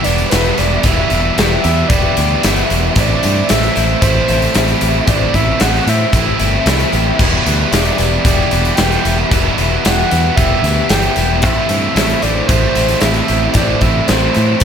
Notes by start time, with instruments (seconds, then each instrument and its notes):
Already playing: overdriven electric guitar E2 B2 E3 G3 B3 E4, twelve-string acoustic guitar G4 B4
0.03 fingered electric bass E1, overdriven electric guitar E3 G3 B3 E4, soft synth lead D5, closed hi-hat, tambourine
0.18 closed hi-hat
0.30 fingered electric bass E1, overdriven electric guitar E3 G3 B3 E4, twelve-string acoustic guitar A4, soft synth lead B4, snare, closed hi-hat, tambourine
0.44 closed hi-hat
0.58 fingered electric bass E1, twelve-string acoustic guitar G4, soft synth lead D5, closed hi-hat, tambourine
0.83 fingered electric bass E1, overdriven electric guitar E2 B2 E3 G3 B3 E4, twelve-string acoustic guitar B4, soft synth lead E5, kick, closed hi-hat, tambourine
1.10 fingered electric bass E1, overdriven electric guitar E3 G3 B3 E4, closed hi-hat
1.38 fingered electric bass E1, overdriven electric guitar E3 G3 B3 E4, twelve-string acoustic guitar G4, snare, closed hi-hat, tambourine
1.61 twelve-string acoustic guitar B4, soft synth lead E5, closed hi-hat
1.65 fingered electric bass E2, overdriven electric guitar E3 G3 B3 E4, tambourine
1.88 fingered electric bass E1, overdriven electric guitar E2 B2 E3 G3 B3, twelve-string acoustic guitar G4, soft synth lead D5, kick, closed hi-hat, tambourine
1.93 overdriven electric guitar E4
2.17 fingered electric bass D2, overdriven electric guitar E3 G3 B3 E4, closed hi-hat, tambourine
2.43 fingered electric bass G1, overdriven electric guitar E3 G3 B3 E4, twelve-string acoustic guitar A4, snare, closed hi-hat, tambourine
2.56 closed hi-hat
2.70 fingered electric bass E1, twelve-string acoustic guitar G4, closed hi-hat, tambourine
2.95 fingered electric bass A1, overdriven electric guitar A2 E3 A3 C4 E4, twelve-string acoustic guitar C5, soft synth lead D5, kick, closed hi-hat, tambourine
3.22 fingered electric bass G2, overdriven electric guitar A3 C4 E4, closed hi-hat
3.49 fingered electric bass A1, overdriven electric guitar E3 A3 C4 E4, twelve-string acoustic guitar A4, soft synth lead E5, snare, closed hi-hat, tambourine
3.63 closed hi-hat
3.76 fingered electric bass A1, overdriven electric guitar A3 C4 E4, twelve-string acoustic guitar C5, closed hi-hat, tambourine
4.01 fingered electric bass A1, overdriven electric guitar A2 E3 A3 C4 E4, twelve-string acoustic guitar G4, soft synth lead C5, kick, closed hi-hat, tambourine
4.28 fingered electric bass A1, overdriven electric guitar A3 C4 E4, closed hi-hat, tambourine
4.42 closed hi-hat
4.54 fingered electric bass A1, overdriven electric guitar E3 A3 C4 E4, twelve-string acoustic guitar A4, snare, closed hi-hat, tambourine
4.68 closed hi-hat
4.81 fingered electric bass A1, twelve-string acoustic guitar G4, closed hi-hat, tambourine
5.07 fingered electric bass A1, overdriven electric guitar A2 E3 A3 C4 E4, twelve-string acoustic guitar C5, soft synth lead D5, kick, closed hi-hat, tambourine
5.34 fingered electric bass A1, overdriven electric guitar A3 C4 E4, soft synth lead E5, kick, closed hi-hat, tambourine
5.60 fingered electric bass A1, overdriven electric guitar E3 A3 C4 E4, twelve-string acoustic guitar A4, soft synth lead F#5, snare, closed hi-hat, tambourine
5.87 fingered electric bass A2, overdriven electric guitar A3 C4 E4, twelve-string acoustic guitar C5, soft synth lead E5, closed hi-hat, tambourine
6.12 fingered electric bass A1, overdriven electric guitar A2 E3 A3 C4 E4, twelve-string acoustic guitar G4, kick, closed hi-hat, tambourine
6.39 fingered electric bass G1, overdriven electric guitar A3 C4 E4, closed hi-hat, tambourine
6.66 fingered electric bass C2, overdriven electric guitar E3 A3 C4, twelve-string acoustic guitar A4, snare, closed hi-hat, tambourine
6.70 overdriven electric guitar E4
6.80 closed hi-hat
6.92 fingered electric bass A1, twelve-string acoustic guitar G4, closed hi-hat, tambourine
7.19 fingered electric bass E1, overdriven electric guitar E2 B2 E3 G3 B3 E4, twelve-string acoustic guitar B4, kick, crash, tambourine
7.46 fingered electric bass D2, overdriven electric guitar E3 G3 B3 E4, closed hi-hat
7.72 fingered electric bass E1, overdriven electric guitar E3 G3 B3 E4, twelve-string acoustic guitar G4, soft synth lead D5, snare, closed hi-hat, tambourine
7.85 closed hi-hat
7.98 fingered electric bass E1, overdriven electric guitar E3 G3 B3 E4, twelve-string acoustic guitar B4, closed hi-hat, tambourine
8.22 fingered electric bass E1, overdriven electric guitar E2 B2 E3, twelve-string acoustic guitar G4, soft synth lead D5, kick, closed hi-hat, tambourine
8.27 overdriven electric guitar G3 B3 E4
8.51 fingered electric bass E1, overdriven electric guitar E3 G3 B3 E4, closed hi-hat, tambourine
8.65 closed hi-hat
8.75 fingered electric bass E1, overdriven electric guitar E3 G3 B3, soft synth lead G5, snare, closed hi-hat, tambourine
8.79 overdriven electric guitar E4, twelve-string acoustic guitar A4
8.92 closed hi-hat
9.05 fingered electric bass E1, twelve-string acoustic guitar G4, closed hi-hat, tambourine
9.31 fingered electric bass E1, overdriven electric guitar E2 B2 E3 G3 B3 E4, twelve-string acoustic guitar B4, kick, closed hi-hat, tambourine
9.58 fingered electric bass E1, overdriven electric guitar E3 G3 B3 E4, closed hi-hat
9.84 fingered electric bass E1, overdriven electric guitar E3 G3 B3 E4, twelve-string acoustic guitar G4, soft synth lead F#5, snare, closed hi-hat, tambourine
10.11 fingered electric bass E2, overdriven electric guitar E3 G3 B3 E4, twelve-string acoustic guitar B4, closed hi-hat, tambourine
10.36 fingered electric bass E1, overdriven electric guitar E2 B2 E3 G3 B3 E4, twelve-string acoustic guitar G4, soft synth lead E5, kick, closed hi-hat, tambourine
10.63 fingered electric bass D2, overdriven electric guitar E3 G3 B3 E4, closed hi-hat, tambourine
10.89 fingered electric bass G1, overdriven electric guitar E3 G3 B3 E4, twelve-string acoustic guitar A4, soft synth lead G5, snare, closed hi-hat, tambourine
11.02 closed hi-hat
11.16 fingered electric bass E1, twelve-string acoustic guitar G4, closed hi-hat, tambourine
11.42 fingered electric bass A1, overdriven electric guitar A2 E3 A3 C4 E4, twelve-string acoustic guitar C5, soft synth lead E5, kick, closed hi-hat, tambourine
11.47 overdriven electric guitar E4
11.68 fingered electric bass G2, overdriven electric guitar A3 C4 E4, closed hi-hat
11.95 fingered electric bass A1, overdriven electric guitar E3 A3 C4 E4, twelve-string acoustic guitar A4, snare, closed hi-hat, tambourine
12.10 closed hi-hat
12.22 fingered electric bass A1, overdriven electric guitar A3 C4 E4, twelve-string acoustic guitar C5, soft synth lead D5, closed hi-hat, tambourine
12.47 fingered electric bass A1, overdriven electric guitar A2 E3 A3 C4, twelve-string acoustic guitar G4, soft synth lead C5, kick, closed hi-hat, tambourine
12.51 overdriven electric guitar E4
12.75 fingered electric bass A1, overdriven electric guitar A3 C4 E4, closed hi-hat, tambourine
12.89 snare, closed hi-hat
13.00 fingered electric bass A1, overdriven electric guitar E3 A3 C4 E4, twelve-string acoustic guitar A4, soft synth lead E5, snare, closed hi-hat, tambourine
13.14 closed hi-hat
13.28 fingered electric bass A1, twelve-string acoustic guitar G4, closed hi-hat, tambourine
13.53 fingered electric bass A1, overdriven electric guitar A2, twelve-string acoustic guitar C5, soft synth lead D5, kick, closed hi-hat, tambourine
13.57 overdriven electric guitar A2 E3 A3 C4 E4
13.81 fingered electric bass A1, overdriven electric guitar A3 C4 E4, soft synth lead E5, kick, closed hi-hat, tambourine
14.08 fingered electric bass A1, overdriven electric guitar E3 A3 C4 E4, twelve-string acoustic guitar A4, soft synth lead C5, snare, closed hi-hat, tambourine
14.35 fingered electric bass A2, overdriven electric guitar A3 C4 E4, twelve-string acoustic guitar C5, closed hi-hat, tambourine
14.60 closed hi-hat